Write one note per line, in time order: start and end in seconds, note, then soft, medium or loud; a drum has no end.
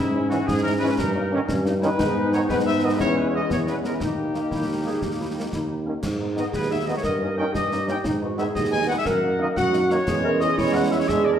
0.00 0.39 G#2 medium
0.00 0.94 C#4 medium
0.00 0.28 E4 medium
0.15 0.21 G#3 medium
0.15 0.20 C#4 medium
0.15 0.21 E4 medium
0.30 0.37 E3 medium
0.30 0.37 G#3 medium
0.30 0.37 C#4 medium
0.30 0.37 E4 medium
0.30 0.46 F#4 medium
0.30 snare medium
0.46 0.89 G#2 medium
0.46 0.64 G#4 loud
0.46 concert bass drum medium
0.46 snare medium
0.63 0.70 G#3 medium
0.63 0.70 C#4 medium
0.63 0.70 E4 medium
0.63 0.71 A#4 loud
0.79 0.88 G#3 medium
0.79 0.88 C#4 medium
0.79 0.88 E4 medium
0.79 0.83 B4 loud
0.83 0.89 E3 medium
0.83 0.89 C#4 medium
0.88 0.93 B4 medium
0.96 1.40 G2 medium
0.96 1.45 D#4 medium
0.96 1.60 A#4 medium
0.96 concert bass drum medium
0.96 snare medium
1.15 1.21 A#3 medium
1.15 1.21 C#4 medium
1.15 1.21 D#4 medium
1.31 1.39 D#3 medium
1.31 1.38 A#3 medium
1.31 1.37 C#4 medium
1.31 1.40 C#4 medium
1.31 1.38 D#4 medium
1.48 1.91 G2 medium
1.48 1.65 C#4 medium
1.48 concert bass drum medium
1.48 snare medium
1.64 1.72 A#3 medium
1.64 1.72 C#4 medium
1.64 1.72 D#4 medium
1.64 1.71 D#4 medium
1.64 snare medium
1.82 1.88 D#3 medium
1.82 1.89 A#3 medium
1.82 1.88 C#4 medium
1.82 1.89 C#4 medium
1.82 1.89 D#4 medium
1.82 1.89 E4 medium
1.82 2.29 B4 loud
1.82 snare medium
1.98 2.44 G#2 medium
1.98 2.46 G#3 medium
1.98 2.46 B3 medium
1.98 2.95 D#4 medium
1.98 2.46 D#4 medium
1.98 concert bass drum medium
1.98 snare medium
1.98 crash soft
2.32 2.38 D#3 medium
2.32 2.38 B3 medium
2.32 2.41 C#5 medium
2.32 snare medium
2.49 2.94 G#2 medium
2.49 2.97 G#3 medium
2.49 2.97 B3 medium
2.49 2.97 D#4 medium
2.49 2.57 B4 loud
2.49 concert bass drum medium
2.49 snare medium
2.66 2.82 E5 loud
2.82 2.89 D#3 medium
2.82 2.88 B3 medium
2.82 2.92 D#5 medium
2.93 3.00 B4 medium
2.99 3.44 E2 medium
2.99 3.97 G#3 medium
2.99 3.63 B3 medium
2.99 3.50 C#4 medium
2.99 3.97 E4 medium
2.99 3.16 C#5 loud
2.99 concert bass drum medium
2.99 snare medium
3.17 3.25 B4 medium
3.27 3.34 C#5 medium
3.34 3.40 E3 medium
3.34 3.40 G#3 medium
3.34 3.49 D#5 medium
3.50 3.88 E2 medium
3.50 3.97 B3 medium
3.50 3.58 C#5 medium
3.50 concert bass drum medium
3.50 snare medium
3.67 4.01 C#4 medium
3.67 3.75 B4 medium
3.67 snare medium
3.83 3.91 E3 medium
3.83 3.90 G#3 medium
3.83 3.91 A#4 medium
3.83 snare medium
3.94 4.01 B4 medium
4.00 4.45 D#2 soft
4.00 5.86 A#3 medium
4.00 4.45 D#4 medium
4.00 5.86 D#4 medium
4.00 5.86 G4 medium
4.00 concert bass drum medium
4.00 snare medium
4.33 4.40 D#3 medium
4.33 4.40 A#3 medium
4.33 snare soft
4.51 4.96 D#2 medium
4.51 4.67 E4 medium
4.51 concert bass drum medium
4.51 snare medium
4.69 4.85 D#4 medium
4.84 4.90 D#3 medium
4.84 4.90 A#3 medium
4.84 5.01 G#4 medium
5.02 5.47 D#2 medium
5.02 5.10 G4 medium
5.02 concert bass drum medium
5.02 snare medium
5.12 5.19 D#4 medium
5.19 5.27 E4 medium
5.36 5.43 D#3 medium
5.36 5.42 A#3 medium
5.36 5.43 D#4 medium
5.52 5.97 D#2 medium
5.52 5.60 E4 medium
5.52 concert bass drum medium
5.52 snare medium
5.60 5.71 D#4 medium
5.85 5.92 D#3 medium
5.85 5.92 A#3 medium
5.85 5.93 C#4 medium
6.03 6.45 G#2 medium
6.03 concert bass drum medium
6.03 snare medium
6.03 crash soft
6.19 6.26 B3 soft
6.19 6.26 D#4 soft
6.35 6.42 D#3 medium
6.35 6.42 B3 medium
6.35 6.42 D#4 medium
6.35 6.45 D#5 medium
6.35 snare soft
6.51 6.96 D#2 medium
6.51 6.99 G#4 medium
6.51 6.69 B4 medium
6.51 concert bass drum medium
6.51 snare medium
6.70 6.76 B3 medium
6.70 6.76 D#4 medium
6.70 6.86 E5 medium
6.86 6.94 D#3 medium
6.86 6.93 B3 medium
6.86 6.94 B3 medium
6.86 6.93 D#4 medium
6.86 6.95 D#5 medium
6.96 7.00 C#5 medium
7.03 7.46 G2 medium
7.03 7.50 A#4 medium
7.03 7.35 D#5 medium
7.03 concert bass drum medium
7.03 snare medium
7.21 7.27 A#3 medium
7.21 7.27 C#4 medium
7.21 7.27 D#4 medium
7.37 7.44 D#3 medium
7.37 7.44 A#3 medium
7.37 7.43 C#4 medium
7.37 7.44 C#4 medium
7.37 7.44 D#4 medium
7.37 7.53 G5 medium
7.52 7.97 G2 medium
7.52 8.04 G4 medium
7.52 7.86 D#5 loud
7.52 concert bass drum medium
7.52 snare medium
7.71 7.78 A#3 medium
7.71 7.78 C#4 medium
7.71 7.77 D#4 medium
7.71 snare medium
7.87 7.93 D#3 medium
7.87 7.94 A#3 medium
7.87 7.93 C#4 medium
7.87 7.94 C#4 medium
7.87 7.94 D#4 medium
7.87 7.96 G5 medium
7.87 snare soft
8.04 8.47 G#2 medium
8.04 8.21 D#4 medium
8.04 concert bass drum medium
8.04 snare medium
8.22 8.28 G#3 medium
8.22 8.28 B3 medium
8.22 8.28 D#4 medium
8.22 8.39 F#4 medium
8.37 8.44 D#3 medium
8.37 8.44 G#3 medium
8.37 8.44 B3 medium
8.37 8.45 B3 medium
8.37 8.45 D#4 medium
8.37 9.06 G#4 medium
8.37 8.46 E5 medium
8.37 snare medium
8.55 8.98 D#2 medium
8.55 8.71 D#5 medium
8.55 concert bass drum medium
8.55 snare medium
8.71 8.78 G#3 medium
8.71 8.79 B3 medium
8.71 8.78 D#4 medium
8.71 8.87 G#5 loud
8.86 8.94 D#3 medium
8.86 8.94 G#3 medium
8.86 8.93 B3 medium
8.86 8.94 B3 medium
8.86 8.95 D#4 medium
8.86 8.93 F#5 loud
8.98 9.06 E5 medium
9.05 9.48 F#2 medium
9.05 9.53 A#4 medium
9.05 9.40 F#5 medium
9.05 concert bass drum medium
9.05 snare medium
9.23 9.29 A#3 medium
9.23 9.29 D#4 medium
9.39 9.46 D#3 medium
9.39 9.46 A#3 medium
9.39 9.46 D#4 medium
9.39 9.48 D#5 medium
9.56 9.99 F#2 medium
9.56 10.04 F#4 medium
9.56 9.88 F#5 loud
9.56 concert bass drum medium
9.56 snare medium
9.73 9.79 A#3 medium
9.73 9.79 D#4 medium
9.73 snare medium
9.90 9.97 D#3 medium
9.90 9.97 A#3 medium
9.90 9.96 D#4 medium
9.90 10.41 C#5 loud
9.90 snare soft
10.07 10.49 E2 medium
10.07 10.55 G#3 medium
10.07 10.55 C#4 medium
10.07 10.15 G#4 medium
10.07 concert bass drum medium
10.07 snare medium
10.07 crash soft
10.23 10.29 G#3 medium
10.23 10.29 C#4 medium
10.23 10.29 E4 medium
10.23 10.39 A#4 medium
10.40 10.47 G#3 medium
10.40 10.47 C#4 medium
10.40 10.46 E4 medium
10.40 10.59 G#4 medium
10.40 10.56 D#5 loud
10.40 snare medium
10.57 11.01 E2 medium
10.57 11.06 G#3 medium
10.57 11.06 C#4 medium
10.57 11.05 E4 medium
10.57 10.74 C#5 loud
10.57 concert bass drum medium
10.57 snare medium
10.73 10.81 G#3 medium
10.73 10.81 C#4 medium
10.73 10.81 E4 medium
10.73 10.91 F#5 loud
10.90 10.98 G#3 medium
10.90 10.98 C#4 medium
10.90 10.98 E4 medium
10.90 10.99 E5 medium
10.99 11.07 C#5 medium
11.07 11.39 E2 medium
11.07 11.39 G#3 medium
11.07 11.39 D4 medium
11.07 11.39 G#4 medium
11.07 11.24 E5 loud
11.07 concert bass drum medium
11.07 snare medium
11.24 11.31 G#3 medium
11.24 11.31 D4 medium
11.24 11.33 D5 medium
11.32 11.36 A#4 medium